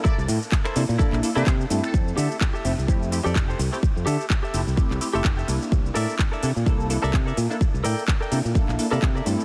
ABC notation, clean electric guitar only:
X:1
M:4/4
L:1/16
Q:"Swing 16ths" 1/4=127
K:F
V:1 name="Clean electric guitar"
[EABe] z4 [EABc] z2 [EABd]2 z [EABd] z4 | z2 [GAe]2 z [GAe] z4 z [GAd] z [GAc] z2 | z2 [GAe]2 z [GAe] z4 z [GAe] z [GAe] z2 | z2 [ABde]2 z [ABde] z4 z [ABde] z [ABde] z2 |
z2 [ABdg]2 z [ABdg] z4 z [ABde] z [ABde] z2 |]